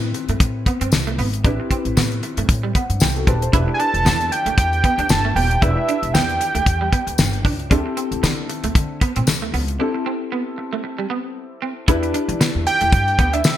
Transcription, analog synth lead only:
3.74 3.81 G#5 medium
3.80 4.33 A5 loud
4.32 4.57 G5 loud
4.58 5.12 G5 loud
5.10 5.35 A5 loud
5.36 5.64 G5 medium
5.62 6.13 E5 medium
6.14 7.40 G5 loud
12.67 13.35 G5 loud
13.33 13.57 E5 loud

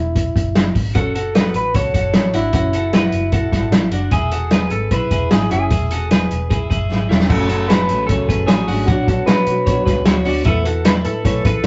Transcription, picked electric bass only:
0.00 0.30 E1 medium
0.36 0.69 F#1 medium
0.75 0.96 G#1 medium
0.96 1.52 F#1 medium
1.54 1.71 A1 medium
1.75 1.91 C#2 medium
1.95 2.11 F#1 medium
2.34 2.51 G#1 medium
2.54 3.10 F#1 medium
3.13 3.47 F#1 medium
3.53 3.70 G#1 medium
3.71 3.89 A1 medium
3.91 4.09 F#1 medium
4.12 4.68 E1 medium
4.71 4.88 G#1 medium
4.91 5.08 B1 medium
5.11 5.28 E1 medium
5.32 5.48 G#1 medium
5.52 5.68 F#1 medium
5.71 6.27 E1 medium
6.31 6.64 E1 medium
6.71 6.87 F#1 medium
6.90 7.07 G#1 medium
7.10 7.27 E1 medium
7.30 7.86 F#1 loud
7.89 8.06 A1 medium
8.09 8.26 C#2 medium
8.29 8.45 F#1 medium
8.48 8.65 A1 medium
8.68 8.85 G#1 medium
8.88 9.44 B1 loud
9.47 9.81 B1 medium
9.87 10.04 C#2 medium
10.06 10.23 D2 medium
10.26 10.43 D2 medium
10.46 11.02 E2 loud
11.05 11.22 A2 medium
11.25 11.42 B1 medium
11.45 11.62 A1 loud

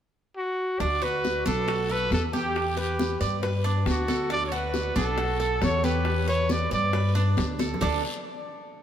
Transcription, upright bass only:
0.80 1.42 D2 medium
1.46 2.08 B1 medium
2.11 3.15 E2 medium
3.21 3.82 G2 medium
3.86 4.90 D2 medium
4.96 5.58 B1 medium
5.62 6.65 E2 medium
6.71 7.33 G2 medium
7.37 7.76 D2 medium
7.82 8.02 D2 medium

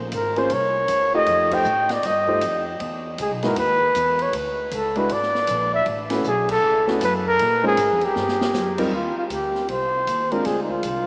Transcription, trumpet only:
0.15 0.40 A#4 medium
0.39 0.54 C5 medium
0.53 1.15 C#5 loud
1.15 1.55 D#5 loud
1.54 1.93 G5 loud
1.92 2.07 D5 medium
2.06 2.67 D#5 loud
3.21 3.31 G#4 medium
3.45 3.57 A#4 medium
3.59 4.24 B4 loud
4.22 4.35 C#5 medium
4.74 5.00 A4 medium
4.99 5.14 B4 medium
5.12 5.73 D5 loud
5.74 5.86 E5 loud
6.28 6.49 G#4 loud
6.51 6.86 A4 loud
7.03 7.14 B4 loud
7.27 7.62 A#4 loud
7.66 8.06 G#4 loud
8.04 8.80 G4 medium
8.93 9.15 F4 medium
9.18 9.24 F4 medium
9.32 9.67 G4 medium
9.69 10.33 C5 medium
10.32 10.47 A#4 medium
10.46 10.61 G#4 medium
10.63 10.72 D#4 medium
10.70 11.07 F4 medium

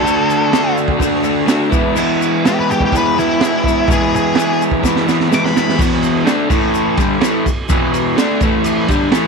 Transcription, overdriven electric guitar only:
0.02 0.50 D3 loud
0.02 0.51 A3 medium
0.02 0.51 D4 loud
0.02 0.52 F#4 medium
0.51 0.96 D3 medium
0.51 0.98 A3 medium
0.51 0.99 D4 medium
0.51 1.00 F#4 medium
0.98 1.45 D3 loud
0.98 1.24 A3 loud
0.98 1.22 D4 loud
0.98 1.21 F#4 loud
1.22 1.46 A3 medium
1.22 1.47 D4 medium
1.22 1.47 F#4 medium
1.46 1.70 D3 medium
1.46 1.71 A3 medium
1.46 1.70 D4 medium
1.46 1.69 F#4 medium
1.70 1.95 E3 medium
1.70 1.96 G#3 medium
1.70 1.97 B3 loud
1.70 1.98 E4 loud
1.95 2.43 E3 medium
1.95 2.44 G#3 loud
1.95 2.45 B3 medium
1.95 2.46 E4 loud
2.43 2.91 E3 medium
2.43 2.92 G#3 medium
2.43 2.93 B3 medium
2.43 2.93 E4 medium
2.91 3.39 E3 loud
2.91 3.19 G#3 medium
2.91 3.18 B3 loud
2.91 3.16 E4 loud
3.16 3.40 G#3 medium
3.16 3.41 B3 medium
3.16 3.42 E4 medium
3.39 3.87 E3 medium
3.39 3.66 G#3 medium
3.39 3.65 B3 medium
3.39 3.64 E4 medium
3.65 3.88 G#3 medium
3.65 3.89 B3 medium
3.65 3.90 E4 medium
3.88 4.34 E3 medium
3.88 4.35 G#3 medium
3.88 4.36 B3 medium
3.88 4.37 E4 loud
4.36 4.81 E3 medium
4.36 4.81 G#3 medium
4.36 4.82 B3 medium
4.36 4.83 E4 medium
4.82 5.28 E3 loud
4.82 5.08 G#3 loud
4.82 5.07 B3 loud
4.82 5.05 E4 loud
5.06 5.29 G#3 medium
5.06 5.31 B3 medium
5.06 5.31 E4 medium
5.29 5.76 E3 medium
5.29 5.54 G#3 medium
5.29 5.53 B3 medium
5.29 5.52 E4 medium
5.53 5.76 G#3 medium
5.53 5.77 B3 medium
5.53 5.77 E4 medium
5.76 6.24 E2 loud
5.76 6.24 B2 loud
5.76 6.25 E3 loud
6.25 6.48 D3 loud
6.25 6.49 A3 loud
6.25 6.50 D4 loud
6.49 6.97 A2 loud
6.49 6.97 E3 medium
6.49 6.97 A3 loud
6.98 7.21 G2 medium
6.98 7.20 D3 medium
6.98 7.20 G3 loud
7.20 7.45 A2 medium
7.20 7.45 E3 loud
7.20 7.45 A3 loud
7.46 muted overdriven electric guitar stroke medium
7.69 8.17 E2 loud
7.69 8.16 B2 loud
7.69 8.17 E3 loud
8.17 8.41 D3 loud
8.17 8.41 A3 loud
8.17 8.42 D4 loud
8.42 8.88 A2 loud
8.42 8.89 E3 medium
8.42 8.89 A3 loud
8.88 9.12 G2 medium
8.88 9.11 D3 medium
8.88 9.12 G3 medium
9.12 9.27 A2 medium
9.12 9.27 E3 loud
9.12 9.27 A3 loud

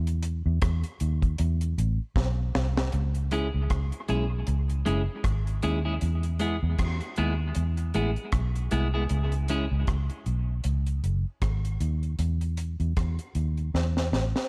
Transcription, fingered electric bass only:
0.00 0.42 E2 loud
0.46 0.60 E2 medium
0.62 0.82 E2 medium
1.01 1.36 D#2 medium
1.40 1.74 E2 medium
1.78 1.98 A1 medium
2.16 2.51 B1 medium
2.55 2.90 C2 loud
2.94 3.50 C#2 loud
3.54 3.69 C#2 medium
3.71 3.91 C#2 medium
4.09 4.44 B1 medium
4.48 4.83 C#2 medium
4.87 5.07 F#1 medium
5.25 5.60 G#1 medium
5.64 5.99 D#2 medium
6.02 6.59 E2 loud
6.63 6.77 E2 medium
6.79 6.99 E2 medium
7.18 7.53 D#2 medium
7.56 7.91 E2 medium
7.95 8.15 A1 medium
8.33 8.68 B1 medium
8.73 9.07 C2 loud
9.11 9.67 C#2 loud
9.71 9.86 C#2 medium
9.88 10.08 C#2 medium
10.26 10.61 B1 medium
10.65 11.00 C#2 medium
11.04 11.24 F#1 medium
11.42 11.77 G#1 medium
11.81 12.16 D#2 medium
12.19 12.76 E2 loud
12.80 12.95 E2 medium
12.97 13.17 E2 medium
13.35 13.70 D#2 medium
13.74 14.09 E2 medium
14.12 14.32 A1 medium

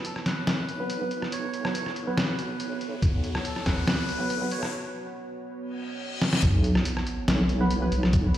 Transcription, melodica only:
0.05 0.14 A4 medium
0.26 1.28 B4 loud
1.33 1.92 C#5 loud
2.18 2.77 B4 medium
3.45 3.67 A4 medium
3.66 3.86 B4 medium
3.88 4.53 B4 loud
4.52 4.61 C#5 loud

